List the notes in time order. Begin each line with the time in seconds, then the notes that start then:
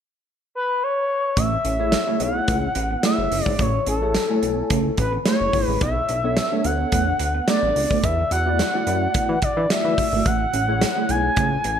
0.55 B4
0.83 C#5
1.37 A1 A3 E5, kick, closed hi-hat
1.52 muted clean electric guitar stroke
1.65 A1 C#4, closed hi-hat
1.79 A3 E4 G#4 C#5
1.92 snare, closed hi-hat
2.07 A3 E4 G#4 C#5
2.20 B1 B3 F#5, closed hi-hat
2.48 C#2 A3, kick, closed hi-hat
2.75 A1, muted clean electric guitar stroke, closed hi-hat
2.91 B3
3.03 A3 E4 G#4 C#5 E5, snare, closed hi-hat
3.18 F#1, muted clean electric guitar stroke
3.31 F#1, open hi-hat
3.45 G#1 G#3 D5, kick
3.59 A1 A3 C#5, kick, closed hi-hat
3.74 muted clean electric guitar stroke
3.86 A1 C#4 A4, closed hi-hat
4.02 A3 E4 G#4 C#5
4.14 snare, closed hi-hat
4.29 A3 E4 C#5 G#5
4.42 B1 B3, closed hi-hat
4.70 C#2 A3, kick, closed hi-hat
4.97 A1 B4, muted clean electric guitar stroke, kick, closed hi-hat
5.13 B3
5.26 A3 E4 G#4 C#5, snare, closed hi-hat
5.41 F#1, muted clean electric guitar stroke
5.53 G#1, kick, open hi-hat
5.67 A1 G#3 B4
5.81 B1 B3 E5, kick, closed hi-hat
5.96 muted clean electric guitar stroke
6.09 B1 D4, closed hi-hat
6.24 B3 D4 A4 C#5
6.37 snare, closed hi-hat
6.51 A3 B3 D4 A4 C#5
6.64 D2 B3 F#5, closed hi-hat
6.92 E2 A3, kick, closed hi-hat
7.19 D2, muted clean electric guitar stroke, closed hi-hat
7.35 B3
7.48 A3 B3 D4 A4 D5, snare, closed hi-hat
7.63 A1, muted clean electric guitar stroke
7.76 C#2, open hi-hat
7.90 D2 A3, kick
8.04 E2 E4 E5, kick, closed hi-hat
8.18 muted clean electric guitar stroke
8.31 E2 F#4 F#5, closed hi-hat
8.46 A3 E4 F#4 D5
8.59 snare, closed hi-hat
8.74 A3 D4 E4 F#4 D5
8.87 F#2 E4, closed hi-hat
9.14 B3, kick, closed hi-hat
9.29 E3
9.42 D5, muted clean electric guitar stroke, kick, closed hi-hat
9.57 E3 D4
9.70 A3 B3 E4 F#4 D5 E5, snare, closed hi-hat
9.85 E3, muted clean electric guitar stroke
9.98 kick, open hi-hat
10.13 G#1 A3
10.26 A1 A3 F#5, kick, closed hi-hat
10.40 muted clean electric guitar stroke
10.53 A1 C#4, closed hi-hat
10.68 A3 E4 G#4 C#5
10.81 muted clean electric guitar stroke, snare, closed hi-hat
10.96 A3 E4 G#4 C#5
11.09 B1 B3 G#5, closed hi-hat
11.37 C#2 A3, kick, closed hi-hat
11.64 A1, muted clean electric guitar stroke, closed hi-hat